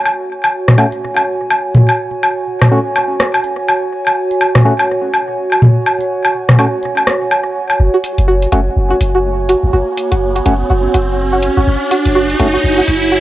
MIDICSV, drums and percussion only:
0, 0, Header, 1, 2, 480
1, 0, Start_track
1, 0, Tempo, 483871
1, 55, Time_signature, 4, 2, 24, 8
1, 13095, End_track
2, 0, Start_track
2, 0, Title_t, "Drums"
2, 55, Note_on_c, 9, 75, 60
2, 55, Note_on_c, 9, 77, 42
2, 154, Note_off_c, 9, 75, 0
2, 154, Note_off_c, 9, 77, 0
2, 436, Note_on_c, 9, 77, 40
2, 535, Note_off_c, 9, 77, 0
2, 676, Note_on_c, 9, 37, 57
2, 676, Note_on_c, 9, 45, 79
2, 774, Note_on_c, 9, 77, 42
2, 775, Note_off_c, 9, 37, 0
2, 775, Note_off_c, 9, 45, 0
2, 873, Note_off_c, 9, 77, 0
2, 916, Note_on_c, 9, 75, 62
2, 1015, Note_off_c, 9, 75, 0
2, 1156, Note_on_c, 9, 77, 42
2, 1255, Note_off_c, 9, 77, 0
2, 1493, Note_on_c, 9, 77, 42
2, 1592, Note_off_c, 9, 77, 0
2, 1733, Note_on_c, 9, 45, 80
2, 1733, Note_on_c, 9, 75, 60
2, 1832, Note_off_c, 9, 45, 0
2, 1832, Note_off_c, 9, 75, 0
2, 1874, Note_on_c, 9, 77, 41
2, 1973, Note_off_c, 9, 77, 0
2, 2214, Note_on_c, 9, 77, 39
2, 2313, Note_off_c, 9, 77, 0
2, 2594, Note_on_c, 9, 37, 58
2, 2594, Note_on_c, 9, 45, 79
2, 2594, Note_on_c, 9, 75, 63
2, 2594, Note_on_c, 9, 77, 39
2, 2694, Note_off_c, 9, 37, 0
2, 2694, Note_off_c, 9, 45, 0
2, 2694, Note_off_c, 9, 75, 0
2, 2694, Note_off_c, 9, 77, 0
2, 2933, Note_on_c, 9, 77, 40
2, 3032, Note_off_c, 9, 77, 0
2, 3172, Note_on_c, 9, 37, 61
2, 3272, Note_off_c, 9, 37, 0
2, 3314, Note_on_c, 9, 77, 39
2, 3413, Note_on_c, 9, 75, 64
2, 3414, Note_off_c, 9, 77, 0
2, 3512, Note_off_c, 9, 75, 0
2, 3655, Note_on_c, 9, 77, 40
2, 3754, Note_off_c, 9, 77, 0
2, 4035, Note_on_c, 9, 77, 41
2, 4134, Note_off_c, 9, 77, 0
2, 4276, Note_on_c, 9, 75, 64
2, 4374, Note_on_c, 9, 77, 40
2, 4375, Note_off_c, 9, 75, 0
2, 4473, Note_off_c, 9, 77, 0
2, 4515, Note_on_c, 9, 37, 62
2, 4515, Note_on_c, 9, 45, 81
2, 4614, Note_off_c, 9, 37, 0
2, 4614, Note_off_c, 9, 45, 0
2, 4755, Note_on_c, 9, 77, 41
2, 4854, Note_off_c, 9, 77, 0
2, 5094, Note_on_c, 9, 75, 64
2, 5094, Note_on_c, 9, 77, 39
2, 5194, Note_off_c, 9, 75, 0
2, 5194, Note_off_c, 9, 77, 0
2, 5476, Note_on_c, 9, 77, 41
2, 5575, Note_on_c, 9, 45, 82
2, 5576, Note_off_c, 9, 77, 0
2, 5675, Note_off_c, 9, 45, 0
2, 5816, Note_on_c, 9, 77, 39
2, 5916, Note_off_c, 9, 77, 0
2, 5958, Note_on_c, 9, 75, 64
2, 6058, Note_off_c, 9, 75, 0
2, 6197, Note_on_c, 9, 77, 40
2, 6296, Note_off_c, 9, 77, 0
2, 6437, Note_on_c, 9, 37, 63
2, 6437, Note_on_c, 9, 45, 87
2, 6535, Note_on_c, 9, 77, 41
2, 6536, Note_off_c, 9, 37, 0
2, 6536, Note_off_c, 9, 45, 0
2, 6634, Note_off_c, 9, 77, 0
2, 6775, Note_on_c, 9, 75, 66
2, 6874, Note_off_c, 9, 75, 0
2, 6917, Note_on_c, 9, 77, 40
2, 7014, Note_on_c, 9, 37, 63
2, 7016, Note_off_c, 9, 77, 0
2, 7113, Note_off_c, 9, 37, 0
2, 7254, Note_on_c, 9, 77, 41
2, 7353, Note_off_c, 9, 77, 0
2, 7636, Note_on_c, 9, 75, 61
2, 7636, Note_on_c, 9, 77, 40
2, 7735, Note_off_c, 9, 75, 0
2, 7735, Note_off_c, 9, 77, 0
2, 7974, Note_on_c, 9, 46, 85
2, 8074, Note_off_c, 9, 46, 0
2, 8117, Note_on_c, 9, 46, 34
2, 8216, Note_off_c, 9, 46, 0
2, 8357, Note_on_c, 9, 46, 35
2, 8455, Note_off_c, 9, 46, 0
2, 8455, Note_on_c, 9, 46, 84
2, 8554, Note_off_c, 9, 46, 0
2, 8935, Note_on_c, 9, 46, 90
2, 9034, Note_off_c, 9, 46, 0
2, 9415, Note_on_c, 9, 46, 88
2, 9514, Note_off_c, 9, 46, 0
2, 9895, Note_on_c, 9, 46, 89
2, 9994, Note_off_c, 9, 46, 0
2, 10037, Note_on_c, 9, 46, 36
2, 10136, Note_off_c, 9, 46, 0
2, 10277, Note_on_c, 9, 46, 37
2, 10375, Note_off_c, 9, 46, 0
2, 10375, Note_on_c, 9, 46, 89
2, 10474, Note_off_c, 9, 46, 0
2, 10855, Note_on_c, 9, 46, 89
2, 10954, Note_off_c, 9, 46, 0
2, 11334, Note_on_c, 9, 46, 95
2, 11434, Note_off_c, 9, 46, 0
2, 11815, Note_on_c, 9, 46, 92
2, 11914, Note_off_c, 9, 46, 0
2, 11957, Note_on_c, 9, 46, 36
2, 12057, Note_off_c, 9, 46, 0
2, 12198, Note_on_c, 9, 46, 38
2, 12296, Note_off_c, 9, 46, 0
2, 12296, Note_on_c, 9, 46, 93
2, 12395, Note_off_c, 9, 46, 0
2, 12775, Note_on_c, 9, 46, 95
2, 12874, Note_off_c, 9, 46, 0
2, 13095, End_track
0, 0, End_of_file